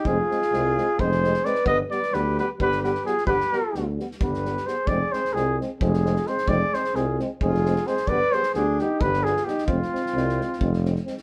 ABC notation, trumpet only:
X:1
M:7/8
L:1/8
Q:1/4=131
K:none
V:1 name="Trumpet"
_A4 c2 d | _e d B B B B _A | B3 z B2 c | d c _A z A2 c |
d c _A z A2 c | d c _A G B A G | F6 z |]